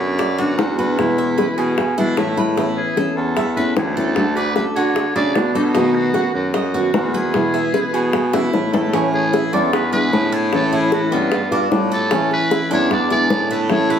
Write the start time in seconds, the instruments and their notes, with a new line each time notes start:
Already playing: baritone saxophone F#2, nylon-string guitar D3 B3 D4 F#4, cuban tres F#4
0.00 muted trumpet E4
0.19 cuban tres D5, muted nylon-string guitar stroke, high bongo
0.38 nylon-string guitar D3 B3 D4 F#4, cuban tres F#4, muted trumpet F#4
0.57 baritone saxophone E2, nylon-string guitar D3 B3 D4 F#4, high bongo, low bongo
0.78 nylon-string guitar D3 B3 D4 F#4, muted trumpet F#4, cuban tres B4
0.98 nylon-string guitar B2 E3 G#3 B3 E4, muted trumpet E4, high bongo
1.18 cuban tres E5, high bongo
1.38 nylon-string guitar E3 G#3 B3 E4, cuban tres B4, high bongo
1.57 baritone saxophone B2, muted trumpet C#4, cuban tres G#4
1.78 muted nylon-string guitar stroke, high bongo
1.97 baritone saxophone B2, nylon-string guitar E3 G#3 B3 E4, muted trumpet D4, cuban tres E4, high bongo
2.17 baritone saxophone A2, nylon-string guitar E3 G#3 B3 E4, muted trumpet E4, high bongo, low bongo
2.37 nylon-string guitar E3 G#3 B3 E4, cuban tres B4, high bongo
2.57 nylon-string guitar E3 B3 C#4 E4, cuban tres E4, high bongo
2.77 muted trumpet G#4
2.97 nylon-string guitar E3 B3 C#4 E4, cuban tres A4, high bongo
3.16 baritone saxophone E2, muted trumpet A4
3.37 cuban tres E5, muted nylon-string guitar stroke, high bongo
3.56 nylon-string guitar B3 C#4 E4, cuban tres A4, muted trumpet B4
3.76 baritone saxophone D2, nylon-string guitar E3 B3 E4, muted trumpet G#4, high bongo, low bongo
3.96 nylon-string guitar B3 C#4 E4, muted trumpet A4, cuban tres A4
4.16 nylon-string guitar D3 A3 D4 F#4, high bongo
4.36 muted trumpet B4, cuban tres D5, high bongo
4.56 nylon-string guitar D3 A3 D4 F#4, cuban tres A4, muted trumpet B4, high bongo
4.76 baritone saxophone D3, cuban tres F#4, muted trumpet C#5
4.96 muted nylon-string guitar stroke, high bongo
5.15 baritone saxophone C#3, nylon-string guitar A3 D4 F#4, cuban tres D4, muted trumpet D5, high bongo
5.35 baritone saxophone B2, nylon-string guitar D3 A3 D4 F#4, muted trumpet D4, high bongo, low bongo
5.55 nylon-string guitar A3 D4 F#4, muted trumpet D#4, cuban tres A4, high bongo
5.64 muted trumpet C#4
5.69 muted trumpet D#4
5.75 nylon-string guitar B2 D#3 A3 B3 F#4, cuban tres D#4, high bongo
5.95 muted trumpet F#4
6.14 nylon-string guitar D#3 A3 B3 F#4, cuban tres F#4, high bongo
6.34 baritone saxophone F#2, muted trumpet F#4
6.54 muted trumpet F#4, cuban tres D#5, muted nylon-string guitar stroke, high bongo
6.73 nylon-string guitar D#3 A3 B3 F#4, cuban tres F#4
6.93 baritone saxophone E2, nylon-string guitar D#3 A3 B3 F#4, high bongo, low bongo
7.13 nylon-string guitar D#3 A3 B3 F#4, muted trumpet G#4, cuban tres B4
7.34 nylon-string guitar B2 E3 G#3 B3 E4, high bongo
7.54 cuban tres E5, high bongo
7.73 nylon-string guitar E3 G#3 B3 E4, cuban tres B4, high bongo
7.93 baritone saxophone B2, cuban tres G#4
8.13 muted nylon-string guitar stroke, high bongo
8.33 nylon-string guitar E3 G#3 B3 E4, cuban tres E4, high bongo
8.53 baritone saxophone A2, nylon-string guitar E3 G#3 B3 E4, low bongo
8.73 nylon-string guitar E3 G#3 B3 E4, muted trumpet E4, cuban tres A4, low bongo
8.93 nylon-string guitar E3 A3 C#4 E4, cuban tres C#4, high bongo
9.13 muted trumpet G#4, high bongo
9.33 cuban tres E4, high bongo
9.52 baritone saxophone E2, nylon-string guitar A3 C#4 E4, cuban tres D4, muted trumpet A4, high bongo
9.73 muted trumpet B4, muted nylon-string guitar stroke, high bongo
9.92 nylon-string guitar D3 G#3 B3 E4, cuban tres G#4, muted trumpet B4, high bongo
10.12 baritone saxophone A2, nylon-string guitar D3 G#3 B3 E4, high bongo, low bongo
10.32 muted trumpet G#4, cuban tres A4
10.52 nylon-string guitar E3 A3 C#4 E4, muted trumpet A4, high bongo
10.72 cuban tres E4, muted trumpet G#4, high bongo
10.92 muted trumpet F#4, high bongo
11.11 baritone saxophone G2, nylon-string guitar A3 C#4 E4, cuban tres B3, muted trumpet F4, high bongo
11.31 muted nylon-string guitar stroke, high bongo
11.51 baritone saxophone G2, nylon-string guitar B3 F4, cuban tres D4, high bongo
11.70 baritone saxophone A2, nylon-string guitar G3 B3 F4, high bongo, low bongo
11.92 cuban tres A4, muted trumpet A4
12.11 nylon-string guitar E3 A3 C#4 E4, cuban tres C#4, high bongo
12.31 muted trumpet B4, high bongo
12.51 cuban tres E4, high bongo
12.70 baritone saxophone E2, nylon-string guitar A3 C#4 E4, cuban tres D4, muted trumpet C#5, high bongo
12.90 muted trumpet D5, muted nylon-string guitar stroke, high bongo
13.10 nylon-string guitar D3 G#3 B3 E4, cuban tres G#4, muted trumpet D5, high bongo
13.30 baritone saxophone A2, nylon-string guitar D3 G#3 B3 E4, high bongo, low bongo
13.51 cuban tres A4, muted trumpet B4
13.69 nylon-string guitar E3 A3 C#4 E4, muted trumpet C#5, high bongo
13.90 cuban tres E4, muted trumpet B4, high bongo